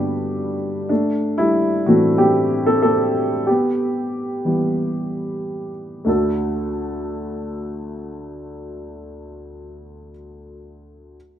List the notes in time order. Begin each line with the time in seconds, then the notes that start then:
Already playing: G2 D3 G3 B3 D4 G4
0.89 A3 D4
1.38 G3 E4
1.86 A2 E3 A3 C4 F#4
2.18 C4 G4
2.66 C4 A4
2.82 C4 A4
3.47 B3 G4
4.45 E3 G3 B3
6.05 D2 A3 D4 F#4 A4